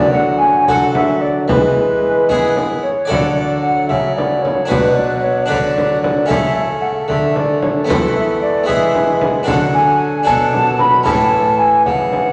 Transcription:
Already playing: D3 F#3 D5
0.12 F#5
0.39 G#5
0.67 F#3 F#4 A4 F#5, frame drum
0.95 E5, frame drum
1.22 D5
1.48 E3 G#3 B4, frame drum
2.29 B3 E4 G#4, frame drum
2.56 frame drum
2.83 C#5
3.05 F#4 A4 D5
3.09 D3 F#3 E5, frame drum
3.15 D5
3.35 D5
3.61 F#5
3.88 C#3 E5, frame drum
4.16 D5, frame drum
4.42 C#5, frame drum
4.65 B2 D4 F#4 B4
4.70 B2 F#3, frame drum
4.95 D5
5.21 C#5
5.46 D3 D4 F#4 B4 D5
5.50 D3 F#3, frame drum
5.78 frame drum
6.02 D5, frame drum
6.26 C#3 A3 C#4 E4 A4 E5
6.30 C#3, frame drum
6.56 E5
6.81 F#5
7.08 D3 A3 E5, frame drum
7.36 D5, frame drum
7.62 C#5, frame drum
7.84 B3 E4 A4
7.89 E3 A3 B4, frame drum
8.15 E5
8.42 D5
8.64 G#3 B3 E4 G#4
8.68 E3 E5, frame drum
8.95 frame drum
9.21 frame drum
9.43 D3 F#3 D4 F#4 A4
9.48 F#5, frame drum
9.74 G#5
10.23 B2 F#3 D4 F#4 A4 A5
10.28 frame drum
10.53 frame drum
10.79 B5, frame drum
11.03 A2 E3 C#4 E4 A4 A5, frame drum
11.59 G#5
11.85 C#3 F#5, frame drum
12.13 frame drum

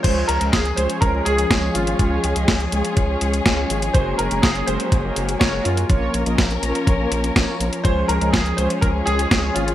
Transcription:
0.03 C#2 F3 G#3 C#4 F4 G#4 C5 C#5, kick, closed hi-hat, crash
0.27 C#2 A#4, closed hi-hat
0.41 C#2 G#3 C#4 F4 D#5, closed hi-hat
0.52 C#2 G#4, kick, snare, closed hi-hat
0.65 closed hi-hat
0.76 C#2 G#3 C#4 F4 C5 C#5, closed hi-hat
0.90 closed hi-hat
1.01 C#2 A#4, kick, closed hi-hat
1.14 G#3 C#4 F4 C#5
1.25 C#2 G#4, closed hi-hat
1.38 closed hi-hat
1.51 C#2 G#3 C#4 F4 C#5, kick, snare, closed hi-hat
1.74 G#1 F4, closed hi-hat
1.87 closed hi-hat
1.99 C#2 G#3 C#4 F4 C#5, kick, closed hi-hat
2.24 C#2, closed hi-hat
2.36 C#2 G#3 C#4 F4 D#5, closed hi-hat
2.48 C#2, kick, snare, closed hi-hat
2.60 closed hi-hat
2.72 C#2 G#3 C#4 F4 C#5, closed hi-hat
2.85 closed hi-hat
2.97 C#2, kick, closed hi-hat
3.09 G#3 C#4 F4 C#5
3.21 C#2, closed hi-hat
3.34 closed hi-hat
3.46 C#2 G#3 C#4 F4 C#5, kick, snare, closed hi-hat
3.70 G#1, closed hi-hat
3.82 closed hi-hat
3.93 F#1 F#3 G#3 A#3 C#4 F#4 A#4 C5, kick, closed hi-hat
4.18 F#1 A#4, closed hi-hat
4.31 F#1 G#3 C#4 F#4 C#5, closed hi-hat
4.42 F#1 G#4, kick, snare, closed hi-hat
4.55 closed hi-hat
4.67 F#1 G#3 C#4 F#4 A#4 C5, closed hi-hat
4.80 closed hi-hat
4.92 F#1, kick, closed hi-hat
5.04 G#3 C#4 F#4 A#4
5.16 F#1, closed hi-hat
5.29 closed hi-hat
5.39 F#1 G#3 C#4 F#4 A#4 C#5, kick, snare, closed hi-hat
5.64 F#2 F4, closed hi-hat
5.77 closed hi-hat
5.89 A#1 F3 A#3 C#4 F4 A#4 C#5, kick, closed hi-hat
6.14 A#1, closed hi-hat
6.26 A#1 A#3 C#4 F4 D#5, closed hi-hat
6.38 A#1, kick, snare, closed hi-hat
6.51 closed hi-hat
6.63 A#1 A#3 C#4 F4 C#5, closed hi-hat
6.75 closed hi-hat
6.87 A#1, kick, closed hi-hat
7.00 A#3 C#4 F4 C#5
7.12 A#1, closed hi-hat
7.24 closed hi-hat
7.36 A#1 A#3 C#4 F4 C#5, kick, snare, closed hi-hat
7.60 A#1, closed hi-hat
7.73 closed hi-hat
7.84 C#2 G#3 C#4 F4 G#4 C5 C#5, kick, closed hi-hat
8.08 C#2 A#4, closed hi-hat
8.21 C#2 G#3 C#4 F4 D#5, closed hi-hat
8.33 C#2 G#4, kick, snare, closed hi-hat
8.46 closed hi-hat
8.57 C#2 G#3 C#4 F4 C5 C#5, closed hi-hat
8.70 closed hi-hat
8.81 C#2 A#4, kick, closed hi-hat
8.95 G#3 C#4 F4 C#5
9.06 C#2 G#4, closed hi-hat
9.19 closed hi-hat
9.31 C#2 G#3 C#4 F4 C#5, kick, snare, closed hi-hat
9.54 G#1 F4, closed hi-hat
9.68 closed hi-hat

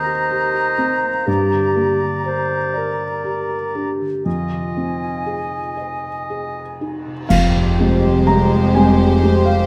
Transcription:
Already playing: D#2 D#3 A#3 C4 G4 A#4 C5 D#5 A#5
0.06 G4
0.30 G4 A#4
0.54 G4
0.78 C4
1.04 A#3
1.27 G2 G4 D5
1.52 D3
1.75 A#3 D4
2.03 G4
2.24 G4 A#4 C5
2.52 G4
2.74 A#4 D5
3.00 G4
3.24 G4 A#4
3.51 G4
3.75 D4 G4
4.01 D3
4.25 F2 F4 D#5 G#5
4.52 C3
4.77 C4 D#4
5.04 F4
5.26 G#4 C5
5.77 C5 D#5
6.30 G#4 C5
6.81 D#4
7.06 C3
7.29 F1 F2 G#3 G4 C5 F5, concert bass drum, crash
7.55 C3
7.79 G#3 C4 G4
8.03 G3
8.27 G#3 C4 G4 C5 A#5
8.75 G3 G#3 C4 C5 G#5
9.23 G#3 C4 G4 C5
9.45 G4 F5

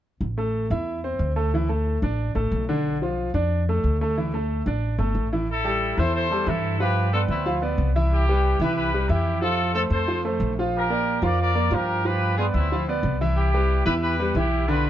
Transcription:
0.21 A1
0.38 A3 A4
0.70 E2 E4 E5
1.04 C4 C5
1.19 D2
1.36 A3 A4
1.54 E3 E4
1.69 A3 A4
2.02 A1 D4 D5
2.35 A1 A3 A4
2.52 B1
2.69 D3 D4
3.02 F3 F4
3.34 F2 D4 D5
3.69 A3 A4
3.84 D2
4.01 A3 A4
4.18 E3 E4
4.34 A3 A4
4.66 A1 D4 D5
4.98 G1 A3 A4
5.15 A1
5.33 E3 E4
5.51 E4 A4
5.64 G3 G4 A4
5.97 E2 E3 E4 A4 C5 E5
6.15 A4 C5
6.31 G3 G4 A4
6.47 G2 E3 E4 A4 E5
6.80 F3 F4 G4 B4 F5
7.13 B3 F4 A4 B4 D5
7.28 D2 C4 E4
7.46 F3 F4 F5
7.62 B3 B4 D5
7.78 C2
7.96 E3 E4 E5
8.13 E4 G4
8.29 G3 G4 B4
8.60 C2 E3 E4 B4 E5
8.64 G4
8.77 G4 B4
8.94 G3 G4 B4
9.08 F2 E3 E4 G4 E5
9.41 F3 F4 A4 F5
9.75 A3 F4 A4 C5
9.90 F2 A4 C5
10.08 F3 F4 F5
10.25 A3 A4 C5
10.40 A#1
10.59 F3 F4 F5
10.76 G4 A#4
10.90 A#3 A#4 D5
11.22 F2 F3 F4 A#4 D5 F5
11.41 A#4 D5
11.55 A#3 A#4 D5
11.71 G2 F3 F4 G4 A#4 F5
12.05 F3 F4 G4 B4 F5
12.37 B3 F4 G#4 B4 D5
12.54 D2 C4 E4
12.72 F3 F4 F5
12.88 B3 B4 D5
13.03 C2
13.21 E3 E4 E5
13.37 E4 G4
13.54 G3 G4 B4
13.86 E2 E3 E4 G4 B4 E5
14.02 G4 B4
14.20 G3 G4 B4
14.35 B1 E3 E4 G4 E5
14.68 D3 D4 F4 B4 D5

